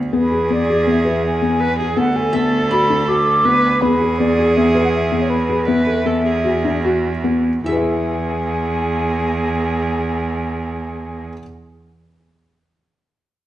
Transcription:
Already playing: cello D2
0.12 cello E2, felt piano B3, viola G#4, flute B4
0.31 felt piano G#4
0.50 felt piano B3, flute D5
0.70 felt piano G#4
0.87 felt piano B3, flute E5
1.05 felt piano B4
1.25 flute G#5
1.42 felt piano B3
1.60 viola B4
1.79 viola G#4, felt piano G#4
1.97 cello D2, felt piano B3, viola A4, flute F#5
2.16 felt piano A4, flute G#5
2.33 felt piano B3, qanun E5, flute A5
2.70 felt piano F#4, qanun D5, flute B5
2.90 felt piano D4
3.07 felt piano F#4, flute D6
3.45 felt piano B3, viola B4
3.81 cello E2, felt piano B3, viola G#4, flute B4
4.02 felt piano G#4
4.18 felt piano B3, flute D5
4.39 felt piano G#4
4.56 felt piano B3, flute E5
4.75 felt piano B4
4.84 flute F#5
4.93 flute E5
5.12 felt piano B3
5.21 flute C#5
5.29 flute B4
5.49 felt piano G#4
5.66 cello E2, felt piano B3, viola B4, flute E5
5.87 felt piano A4
6.06 felt piano B3, viola A4
6.25 viola G#4
6.44 felt piano F#4
6.65 felt piano D4
6.84 felt piano F#4, viola F#4
7.24 felt piano B3
7.64 cello E2, felt piano E4, viola G#4, qanun E5, flute G#5
7.69 felt piano G#4 B4
7.76 felt piano E5

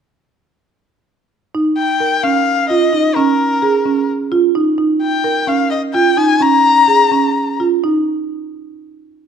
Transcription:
1.55 marimba D#4
1.78 erhu G5
2.00 marimba A#4
2.24 marimba C#4, erhu F5
2.70 marimba F4, erhu D#5
2.93 marimba D#4
3.15 marimba C#4, erhu A#4
3.62 marimba G#4
3.86 marimba C#4
4.32 marimba F4
4.55 marimba D#4
4.78 marimba D#4
5.03 erhu G5
5.24 marimba A#4
5.47 marimba C#4, erhu F5
5.71 erhu D#5
5.94 marimba F4, erhu G5
6.17 marimba D#4, erhu G#5
6.41 marimba C#4, erhu A#5
6.88 marimba G#4
7.11 marimba C#4
7.60 marimba F4
7.84 marimba D#4

